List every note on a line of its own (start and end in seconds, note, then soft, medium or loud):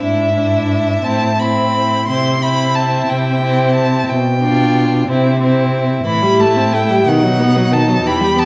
0.01 0.92 G#2 soft
0.01 0.35 D4 soft
0.01 0.36 E4 soft
0.01 1.06 E5 medium
0.36 1.03 D4 soft
0.36 1.03 E4 soft
1.04 1.95 A2 soft
1.04 1.37 C4 soft
1.04 1.38 E4 soft
1.04 1.40 A5 medium
1.38 2.06 C4 soft
1.38 2.07 E4 soft
1.38 2.08 B5 medium
2.07 2.96 C3 soft
2.07 2.41 C4 soft
2.07 2.42 E4 soft
2.07 2.44 C6 medium
2.42 3.40 C4 soft
2.42 3.40 E4 soft
2.42 2.77 B5 medium
2.76 3.11 A5 medium
3.08 3.97 C3 soft
3.08 3.74 G5 medium
3.42 4.07 C4 soft
3.42 4.08 E4 soft
3.75 4.11 A5 medium
4.09 4.97 B2 soft
4.09 5.09 G5 medium
4.41 5.06 D4 soft
4.41 5.08 F4 soft
5.08 5.95 C3 medium
5.08 5.39 C4 soft
5.08 5.41 E4 soft
5.40 6.04 C4 soft
5.40 6.06 E4 soft
6.05 7.08 A2 soft
6.05 6.24 E3 soft
6.05 7.10 E4 soft
6.05 6.42 B5 medium
6.22 6.41 G3 soft
6.40 6.58 A3 soft
6.40 6.76 A5 medium
6.57 6.75 C4 soft
6.73 6.91 A3 soft
6.73 7.10 G5 medium
6.90 7.06 G3 soft
7.06 8.05 B2 soft
7.06 7.25 D#3 medium
7.06 8.07 D#4 soft
7.06 7.75 F#5 medium
7.23 7.41 F#3 soft
7.39 7.58 B3 soft
7.56 7.73 F#3 soft
7.72 7.90 D#3 soft
7.72 8.08 A5 medium
7.88 8.04 F#3 soft
8.04 8.45 E2 soft
8.04 8.22 E3 soft
8.04 8.45 G4 soft
8.04 8.41 B5 medium
8.21 8.38 G3 soft
8.37 8.45 B3 soft
8.37 8.45 A5 medium